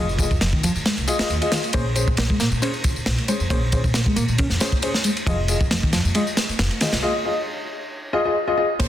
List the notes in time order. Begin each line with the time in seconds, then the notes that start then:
Already playing: F1
0.09 tambourine
0.19 F4 G#4 D#5, kick, ride, tambourine
0.31 F2, kick, tambourine
0.41 F1 F3, snare, ride, tambourine
0.53 D#3, kick
0.63 F2 F3, ride, tambourine
0.75 F2, tambourine
0.86 G#3, snare, ride, tambourine
0.97 C2, ride, tambourine
1.07 F4 G#4 D#5, ride, tambourine
1.19 F4 G#4 D#5, muted upright bass stroke, snare, ride
1.30 D#2, ride, tambourine
1.41 F4 G#4 D#5, ride, tambourine
1.52 D#3 F4 G#4 D#5, snare, ride, tambourine
1.64 ride, tambourine
1.73 A#1 A#3 C#4 G#4 C5, kick, ride, tambourine
1.95 C#4 G#4 C5, ride, tambourine
2.07 A#2, kick, tambourine
2.17 A#1 A#3, snare, ride, tambourine
2.30 G#3, kick
2.40 A#2 A#3, snare, ride, tambourine
2.52 A#2, tambourine
2.62 C#4 G#4 C5, ride, tambourine
2.74 tambourine
2.84 kick, ride, tambourine
2.96 muted upright bass stroke, tambourine
3.06 A#1, snare, ride, tambourine
3.18 ride
3.28 G#3 C#4 G#4 C5, ride, tambourine
3.40 F2, tambourine
3.50 A#1 A#3 C#4 G#4 C5, kick, ride, tambourine
3.72 C#4 G#4 C5, kick, ride, tambourine
3.84 A#2, kick, tambourine
3.94 A#1 A#3, snare, ride, tambourine
4.06 G#3, kick
4.16 A#2 A#3, ride, tambourine
4.28 A#2, tambourine
4.38 C#4, kick, ride, tambourine
4.50 F2, snare, tambourine
4.60 C#4 G#4 C5, snare, ride, tambourine
4.72 kick, tambourine
4.82 C#4 G#4 C5, ride, tambourine
4.94 snare
5.04 G#3, ride, tambourine
5.17 ride, tambourine
5.26 F1 F3 F4 G#4 D#5, kick, ride, tambourine
5.48 F4 G#4 D#5, ride, tambourine
5.61 F2, kick, tambourine
5.71 F1 F3, snare, ride, tambourine
5.83 D#3, kick
5.93 F2 F3, snare, ride, tambourine
6.05 F2, tambourine
6.15 G#3 F4 G#4 D#5, ride, tambourine
6.27 tambourine
6.37 snare, ride, tambourine
6.49 muted upright bass stroke, tambourine
6.59 F1, snare, ride, tambourine
6.71 ride
6.81 D#3 F4 G#4 D#5, snare, ride, tambourine
6.93 C2, snare, ride, tambourine
7.03 F4 G#4 D#5
7.25 F4 G#4 D#5
8.13 F4 G#4 D#5
8.25 F4 G#4 D#5
8.47 F4 G#4 D#5
8.57 F4 G#4 D#5
8.79 A#1 A#3 C#4 G#4 C5, kick, ride, tambourine, downlifter